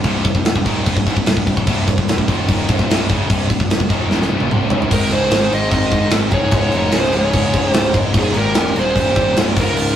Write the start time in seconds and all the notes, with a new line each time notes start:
0.04 C1 C2 G2 C3, kick, crash
0.25 C1 C2 G2, kick, crash
0.35 C1 C2 G2, kick
0.45 snare, crash
0.56 C1 C2 G2, kick
0.64 D#1 D#2 A#2 D#3, kick, crash
0.85 C1 C2 G2, kick, crash
0.96 C1 C2 G2, kick
1.06 C#1 C#2 G#2, kick, crash
1.16 C1 C2 G2, kick
1.26 C1 C2 G2, snare, crash
1.37 C1 C2 G2, kick
1.47 C1 C2 G2, kick, crash
1.57 C1 C2 G2, kick
1.66 C1 C2 G2 C3, kick, crash
1.87 C1 C2 G2, kick, crash
1.98 C1 C2 G2, kick
2.08 snare, crash
2.18 C1 C2 G2, kick
2.28 D#1 D#2 A#2 D#3, kick, crash
2.48 D#1 D#2 A#2 D#3, kick, crash
2.68 C1 C2 G2, kick, crash
2.78 D#1 D#2 A#2, kick
2.89 C1 C2 G2 C3, snare, crash
3.08 C#1 C#2 G#2 C#3, kick, crash
3.29 C1 C2 G2 C3, kick, crash
3.50 C1 C2 G2, kick, crash
3.60 C1 C2 G2, kick
3.70 snare, crash
3.80 C1 C2 G2, kick
3.90 D#1 D#2 A#2 D#3, kick, crash
4.10 D#1 D#2 A#2 D#3, snare
4.22 snare
4.30 C1 C2 G2
4.40 D#1 D#2 A#2, high tom
4.49 C1 C2 G2 C3, mid tom
4.70 C#1 C#2 G#2 C#3, floor tom
4.82 floor tom
4.91 G#1 G#2 D#3 G#3 D#4 A#4, kick, crash
4.99 G#2 D#3
5.07 G#2 D#3
5.11 C#2 G#2 G#4 C5, crash
5.15 D#3
5.22 G#2 D#3
5.30 G#1 G#2 D#3, snare, crash
5.38 G#2 D#3
5.42 G#2 D#3, snare
5.51 G#1 G#2 D#3 C5 D#5, crash
5.61 G#2 D#3
5.69 G#1 G#2 D#3 C5 D#5, kick, crash
5.75 G#2 D#3
5.83 G#2 D#3
5.91 G#1 G#2 D#3, kick, crash
5.99 G#2 D#3
6.07 G#2 D#3
6.11 G#1, snare, crash
6.15 G#2 D#3
6.22 G#2 D#3
6.30 C1 G#2 D#3 G#4, kick, crash
6.35 G#2 D#3 C#5
6.45 G#2 D#3
6.51 C#1 C#2 G#2, kick, crash
6.55 C#3
6.61 C#2 G#2
6.68 C#2 G#2, crash
6.73 F1 C#2 A#4
6.77 G#2 C#5
6.84 C#2 G#2
6.92 C#1 C#2 G#2, snare, crash
6.96 C#2 G#2 G#4 C5
7.04 C#2 G#2, snare
7.12 C#1 C#2 G#2 G#4, crash
7.17 C#5
7.23 C#2 G#2
7.30 C#1 C#2 G#2, kick, crash
7.38 C#2 G#2
7.45 C#2 G#2
7.52 C#1 C#2 G#2, kick, crash
7.61 C#2 G#2
7.68 C#2 G#2 G4 C5
7.74 C#1 C#2 G#2, snare, crash
7.84 C#2 G#2
7.92 C#1 C#2 G#2, kick, crash
7.99 C#2 G#2
8.05 C#2 G#2
8.14 D#1 D#2 A#2 D#3, kick, crash
8.18 D#2 D#4 G#4
8.23 A#2
8.29 D#2 A#2
8.34 G#1 D#2, crash
8.38 A#2 G4 A#4
8.45 D#2 A#2
8.54 D#1 D#2 A#2, snare, crash
8.62 D#2 A#2
8.67 D#2 A#2, snare
8.76 D#1 D#2 A#2 G#4 C5, crash
8.85 D#2 A#2
8.91 D#2 A#2
8.96 D#1, kick, crash
9.00 D#2 A#2 G4 C5
9.09 D#2 A#2
9.16 D#1 D#2 A#2, kick, crash
9.26 D#2 A#2
9.33 C1 D#2 A#2, crash
9.38 D#2 A#2, snare
9.47 D#2 A#2
9.56 C#1 C#2 G#2 C#3, kick, crash
9.61 F4 A#4
9.65 C#2 G#2
9.72 C#2 G#2
9.77 C#1 C#2 G#2, crash
9.86 C#2 G#2